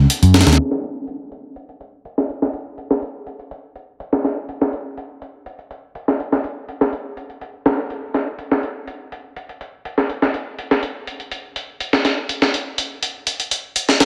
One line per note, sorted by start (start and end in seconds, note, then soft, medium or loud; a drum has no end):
0.10 closed hi-hat medium
0.23 0.42 F#2 medium
0.23 closed hi-hat soft
0.34 snare medium
0.34 closed hi-hat medium
0.41 snare medium
0.41 closed hi-hat medium
0.47 0.56 D#2 loud
0.47 snare medium
0.47 closed hi-hat medium
0.53 snare medium
0.53 closed hi-hat medium
0.58 closed hi-hat medium
0.71 snare medium
0.83 closed hi-hat medium
1.07 closed hi-hat medium
1.32 closed hi-hat medium
1.56 closed hi-hat medium
1.69 closed hi-hat soft
1.81 closed hi-hat medium
2.05 closed hi-hat medium
2.18 snare soft
2.29 closed hi-hat medium
2.42 snare soft
2.53 closed hi-hat medium
2.78 closed hi-hat medium
2.91 snare medium
3.02 closed hi-hat medium
3.27 closed hi-hat medium
3.39 closed hi-hat soft
3.51 closed hi-hat medium
3.75 closed hi-hat medium
4.00 closed hi-hat medium
4.13 snare medium
4.24 snare soft
4.24 closed hi-hat medium
4.49 closed hi-hat medium
4.61 snare medium
4.73 closed hi-hat medium
4.98 closed hi-hat medium
5.22 closed hi-hat medium
5.46 closed hi-hat medium
5.59 closed hi-hat soft
5.71 closed hi-hat medium
5.95 closed hi-hat medium
6.08 snare soft
6.20 closed hi-hat medium
6.32 snare soft
6.44 closed hi-hat medium
6.69 closed hi-hat medium
6.81 snare soft
6.93 closed hi-hat medium
7.17 closed hi-hat medium
7.30 closed hi-hat soft
7.41 closed hi-hat medium
7.66 snare loud
7.66 closed hi-hat medium
7.90 closed hi-hat medium
8.14 snare soft
8.14 closed hi-hat medium
8.39 closed hi-hat medium
8.52 snare medium
8.63 closed hi-hat medium
8.87 closed hi-hat medium
9.12 closed hi-hat medium
9.36 closed hi-hat medium
9.49 closed hi-hat soft
9.61 closed hi-hat medium
9.85 closed hi-hat medium
9.98 snare soft
10.10 closed hi-hat medium
10.22 snare soft
10.34 closed hi-hat medium
10.59 closed hi-hat medium
10.71 snare medium
10.83 closed hi-hat medium
11.07 closed hi-hat medium
11.20 closed hi-hat soft
11.31 closed hi-hat medium
11.56 closed hi-hat medium
11.80 closed hi-hat medium
11.93 snare medium
12.05 snare soft
12.05 closed hi-hat medium
12.29 closed hi-hat medium
12.42 snare medium
12.54 closed hi-hat medium
12.78 closed hi-hat medium
13.02 closed hi-hat medium
13.27 closed hi-hat medium
13.40 closed hi-hat soft
13.51 closed hi-hat medium
13.76 closed hi-hat medium
13.89 snare soft
14.00 snare loud
14.00 closed hi-hat medium